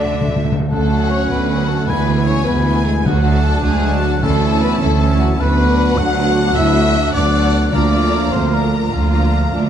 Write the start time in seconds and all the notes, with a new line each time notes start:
Already playing: D2 D3 D4 F#4 D5 E5
0.06 D3
0.13 D3
0.21 D3
0.28 D3
0.36 D3
0.44 D3
0.52 D3
0.60 D3
0.70 D2 D3 F#3 A3 C#4 A4 F#5 A5
0.91 C#4 F#4 F#5
1.10 C#4 C#5 C#6
1.30 D2 B3 B4 B5
1.50 C#4 F#4 F#5
1.68 A3 A4 A5
1.87 D2 D3 E3 G#3 B3 E4 B4 G#5 B5
2.07 B3 E4 G#5
2.26 C#4 C#5 C#6
2.45 D2 B3 E4 B4 G#5 B5
2.65 B3 E4 G#5
2.84 G#3 G#4 G#5
3.05 D2 D3 F#3 D4 F#4 F#5
3.23 D4 F#4 A5
3.44 A3 A4 A5
3.62 D2 G#3 G#4 G#5
3.83 D4 F#4 A5
4.03 F#3 F#4 F#5
4.21 D2 D3 E3 A3 C#4 E4 A4 E5 A5
4.41 C#4 E4 A5
4.60 B3 B4 B5
4.80 D2 A3 C#4 A4 E5 A5
4.99 C#4 E4 A5
5.18 F#3 F#4 F#5
5.38 D2 F#3 B3 D4 B4 F#5 B5
5.59 D4 F#4 F#5
5.96 D2 F#3 B3 D4 F#4 F#5 F#6
6.16 D4 F#4 F#5
6.54 D2 E4 E5 E6
6.75 D4 F#4 F#5
7.13 D2 F#3 B3 D4 D5 F#5 D6
7.34 D4 F#4 F#5
7.71 D2 D3 F3 A#3 D4 F4 D5 F5 A#5 D6
7.92 D4 F4 A#5
8.32 D2 C4 C5 C6
8.51 A#3 D4 F4 A#4 A#5
8.91 D2 F3 A#3 F4 F5
9.12 D4 F4 A#5
9.52 D2 D4